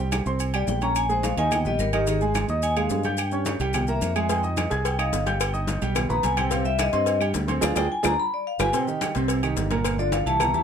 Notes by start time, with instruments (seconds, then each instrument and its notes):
Already playing: fingered electric bass C2
0.00 grand piano G3 G4 G5
0.12 high conga, low agogo, claves, maracas
0.26 fingered electric bass C2, grand piano C4 C5 C6, high conga, maracas
0.40 high conga, low agogo, maracas
0.54 grand piano G3 G4 G5, vibraphone D5, high conga, low agogo, claves, maracas
0.67 fingered electric bass A#1, vibraphone G5, high conga, low timbale, maracas
0.81 grand piano C#4 C#5 C#6, vibraphone A#5, high conga, low agogo, maracas
0.95 vibraphone G#5, high conga, low agogo, claves, maracas
1.09 grand piano G#3 G#4 G#5, vibraphone C5, high conga, maracas
1.23 vibraphone F5, high conga, low agogo, maracas
1.37 fingered electric bass D#2, grand piano D#3 D#4 D#5, vibraphone G#5, low agogo, maracas
1.51 vibraphone G5, high conga, low conga, low agogo, claves, maracas
1.65 fingered electric bass A#1, grand piano G3 G4 G5, vibraphone D#5, high conga, low conga, maracas
1.79 fingered electric bass G#1, vibraphone A#4, high conga, low timbale, low agogo, maracas
1.93 grand piano D#3 D#4 D#5, vibraphone G4, high conga, low agogo, claves, maracas
2.07 grand piano D#3 D#4 D#5, vibraphone G#4, high conga, low agogo, maracas
2.21 grand piano G#3 G#4 G#5, high conga, maracas
2.35 high conga, low agogo, claves, maracas
2.48 fingered electric bass D#2, grand piano D#4 D#5 D#6, high conga, maracas
2.62 vibraphone G#5, high conga, low agogo, maracas
2.76 grand piano G#3 G#4 G#5, vibraphone F5, high conga, low agogo, claves, maracas
2.90 fingered electric bass G2, high conga, low timbale, maracas
3.03 grand piano G4 G5 G6, high conga, low agogo, maracas
3.17 vibraphone G5, high conga, low agogo, claves, maracas
3.32 grand piano C#4 C#5 C#6, high conga, maracas
3.45 high conga, low agogo, maracas
3.60 fingered electric bass C2, grand piano G3 G4 G5, high conga, low agogo, maracas
3.73 vibraphone G5, high conga, low conga, low agogo, claves, maracas
3.87 grand piano A#3 A#4 A#5, vibraphone E5, high conga, maracas
4.01 fingered electric bass F2, high conga, low agogo, maracas
4.16 grand piano G#3 G#4 G#5, low agogo, claves, maracas
4.29 grand piano G#3 G#4 G#5, vibraphone G5, cowbell, high conga, low agogo, maracas
4.43 grand piano D#4 D#5 D#6, high conga, maracas
4.57 cowbell, high conga, low agogo, claves, maracas
4.70 fingered electric bass C2, grand piano G#4 G#5 G#6, cowbell, high conga, maracas
4.85 vibraphone G5, cowbell, high conga, low agogo, maracas
4.98 grand piano D#4 D#5 D#6, vibraphone F5, high conga, low agogo, claves, maracas
5.12 fingered electric bass G1, cowbell, high conga, low timbale, maracas
5.26 grand piano G4 G5 G6, cowbell, high conga, low agogo, maracas
5.40 vibraphone G5, cowbell, high conga, low agogo, claves, maracas
5.53 grand piano D#4 D#5 D#6, high conga, maracas
5.67 cowbell, high conga, low agogo, maracas
5.81 fingered electric bass B1, grand piano G3 G4 G5, high conga, low agogo, maracas
5.95 cowbell, high conga, low conga, low agogo, claves, maracas
6.09 fingered electric bass A#1, grand piano B3 B4 B5, vibraphone A#5, high conga, low conga, maracas
6.23 fingered electric bass C2, vibraphone G#5, cowbell, high conga, low agogo, maracas
6.37 grand piano C3 C4 C5, vibraphone G5, cowbell, high conga, low agogo, claves, maracas
6.51 grand piano C3 C4 C5, vibraphone F5, cowbell, low agogo, maracas
6.64 grand piano G3 G4 G5, vibraphone E5, high conga, maracas
6.79 vibraphone D#5, cowbell, high conga, low agogo, claves, maracas
6.93 fingered electric bass G2, grand piano C4 C5 C6, vibraphone D#5, cowbell, high conga, maracas
7.06 cowbell, high conga, low agogo, maracas
7.20 grand piano G3 G4 G5, high conga, low agogo, claves, maracas
7.34 fingered electric bass D2, cowbell, high conga, low timbale, maracas
7.47 grand piano C4 C5 C6, cowbell, high conga, low agogo, maracas
7.61 fingered electric bass D2, grand piano D4 F4 G#4, vibraphone F5, cowbell, high conga, high timbale, claves, maracas
7.76 fingered electric bass D2, grand piano D4 F4 G#4, vibraphone G5, cowbell, high conga, high timbale, claves, maracas
7.92 vibraphone G#5
8.03 fingered electric bass D2, grand piano D4 F4 G#4, vibraphone A#5, cowbell, high conga, high timbale, claves, maracas
8.20 vibraphone B5
8.34 vibraphone D5
8.47 vibraphone F5
8.59 fingered electric bass G1, grand piano F4 G4 B4, vibraphone G#5, cowbell, high conga, high timbale, claves, maracas
8.73 grand piano C3 C4 C5, vibraphone G5, cowbell, high conga, low agogo, maracas
8.87 grand piano D#3 D#4 G4, high conga, maracas
9.01 cowbell, high conga, low agogo, claves, maracas
9.15 fingered electric bass C2, grand piano C3 C4 C5, cowbell, high conga, maracas
9.28 cowbell, high conga, low agogo, maracas
9.43 grand piano D#3 D#4 G4, high conga, low agogo, claves, maracas
9.57 fingered electric bass G1, cowbell, high conga, low timbale, maracas
9.71 grand piano A#2 A#3 A#4, cowbell, high conga, low agogo, maracas
9.84 cowbell, high conga, low agogo, claves, maracas
9.98 grand piano D3 D4 F4, vibraphone D5, high conga, maracas
10.12 vibraphone F5, cowbell, high conga, low agogo, maracas
10.26 fingered electric bass C2, grand piano E3 E4 G4, vibraphone A5, high conga, low agogo, maracas
10.40 vibraphone A#5, cowbell, high conga, low conga, low agogo, claves, maracas
10.54 fingered electric bass E2, grand piano E3 E4 G4, vibraphone A5, high conga, maracas